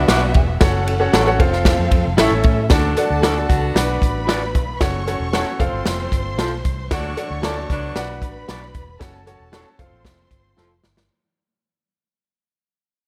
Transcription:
Already playing: string section B3 F#4 E5, grand piano D4 F#4 B4 D5 F#5
0.08 fingered electric bass B1, saxophone section B3 D4 F#4, clean electric guitar F#4 B4 D5, snare, ride
0.34 fingered electric bass E1, kick, ride
0.61 fingered electric bass F#1, grand piano C#4 F#4 A4 C#5 F#5, string section C#4 A4 F#5, kick, snare, ride
0.87 ride
0.99 grand piano C#4 F#4 A4 C#5 F#5
1.13 fingered electric bass A1, clean electric guitar F#4 A4 C#5, snare, ride
1.27 grand piano C#4 F#4 A4 C#5 F#5
1.39 fingered electric bass F1, string section C4 A4 F5, grand piano C4 F4 A4 C5 F5, kick, ride
1.53 snare
1.65 kick, snare, ride
1.79 fingered electric bass F2
1.91 fingered electric bass F2, kick, ride
2.05 fingered electric bass F1
2.17 fingered electric bass A1, grand piano C#4 E4 A4 C#5 E5, string section C#4 A4 E5, clean electric guitar E4 A4 C#5, snare, ride
2.31 fingered electric bass A1
2.43 fingered electric bass A2, kick, ride
2.70 fingered electric bass D2, saxophone section F#3 A3 D4, grand piano D4 F#4 A4 D5 F#5, string section A4 A5, kick, snare, closed hi-hat
2.97 grand piano D4 F#4 A4 D5 F#5, closed hi-hat
3.10 fingered electric bass D2, saxophone section A3 D4 F#4
3.22 grand piano D4 F#4 A4 D5 F#5, saxophone section D4 F#4 A4, clean electric guitar F#4 A4 D5, snare, closed hi-hat
3.48 fingered electric bass C#2, saxophone section B3 D4 F#4, kick, closed hi-hat
3.75 fingered electric bass B1, grand piano D4 F#4 B4 D5 F#5, string section B4 B5, snare, closed hi-hat
4.02 fingered electric bass A1, kick, closed hi-hat
4.27 clean electric guitar F#4 B4 D5, snare, closed hi-hat
4.55 fingered electric bass B1, kick, closed hi-hat
4.81 fingered electric bass F#1, grand piano C#4 F#4 A4 C#5 F#5, string section C#5 C#6, kick, snare, closed hi-hat
5.07 grand piano C#4 F#4 A4 C#5 F#5, closed hi-hat
5.20 fingered electric bass E1
5.33 grand piano C#4 F#4 A4 C#5 F#5, clean electric guitar F#4 A4 C#5, snare, closed hi-hat
5.59 fingered electric bass F1, grand piano C4 F4 A4 C5 F5, string section C5 C6, kick, closed hi-hat
5.73 fingered electric bass G1
5.86 fingered electric bass F1, snare, closed hi-hat
6.12 fingered electric bass G1, kick, closed hi-hat
6.38 fingered electric bass B1, clean electric guitar F4 A4 C5, snare, closed hi-hat
6.65 fingered electric bass C2, kick, closed hi-hat
6.91 fingered electric bass D2, saxophone section F#3 A3 D4, grand piano D4 F#4 A4 D5 F#5, string section C#5 C#6, kick, snare, closed hi-hat
7.17 grand piano D4 F#4 A4 D5 F#5, closed hi-hat
7.30 fingered electric bass D2, saxophone section A3 D4 F#4
7.42 saxophone section A3 C#4 E4, grand piano D4 F4 A4 D5 A5, clean electric guitar F#4 A4 D5, snare, closed hi-hat
7.50 grand piano F#4
7.70 fingered electric bass C#2, saxophone section F#3 B3 D4, kick, closed hi-hat
7.96 fingered electric bass B1, grand piano D4 F#4 B4 D5 F#5, string section B4 B5, snare, closed hi-hat
8.22 fingered electric bass A1, kick, closed hi-hat
8.48 fingered electric bass B1, clean electric guitar F#4 B4 D5, snare, closed hi-hat
8.74 fingered electric bass E1, kick, closed hi-hat
8.99 fingered electric bass F#1, grand piano C#4 F#4 A4 C#5 F#5, string section A4 A5, kick, snare, closed hi-hat
9.26 grand piano C#4 F#4 A4 C#5 F#5, closed hi-hat
9.40 fingered electric bass E1
9.52 grand piano C#4 F#4 A4 C#5 A5, clean electric guitar F#4 A4 C#5, snare, closed hi-hat
9.79 fingered electric bass F1, grand piano C4 F4 A4 C5 F5, string section C5 C6, kick, closed hi-hat
9.92 fingered electric bass A1
10.05 fingered electric bass F1, kick, snare, closed hi-hat
10.31 fingered electric bass G1, kick, closed hi-hat
10.57 fingered electric bass F1, clean electric guitar F4 A4 C5, snare
10.84 fingered electric bass G1, snare
10.97 snare

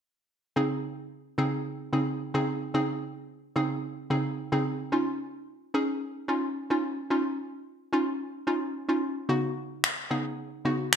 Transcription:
0.56 synth pluck C#3 C4 D#4 G#4
1.38 synth pluck C#3 C4 D#4 G#4
1.93 synth pluck C#3 C4 D#4 G#4
2.34 synth pluck C#3 C4 D#4 G#4
2.74 synth pluck C#3 C4 D#4 G#4
3.56 synth pluck C#3 C4 D#4 G#4
4.10 synth pluck C#3 C4 D#4 G#4
4.52 synth pluck C#3 C4 D#4 G#4
4.92 synth pluck C#4 D#4 F4
5.74 synth pluck C#4 D#4 G#4
6.28 synth pluck C#4 D#4 F4
6.70 synth pluck C#4 D#4 F4
7.10 synth pluck C#4 D#4 F4
7.93 synth pluck C#4 D#4 F4
8.47 synth pluck C#4 D#4 F4
8.89 synth pluck C#4 D#4 F4
9.29 synth pluck C#3 B3 D#4 F#4
9.84 finger snap
10.11 synth pluck C#3 B3 D#4 G#4
10.65 synth pluck C#3 B3 D#4 F#4
10.93 finger snap

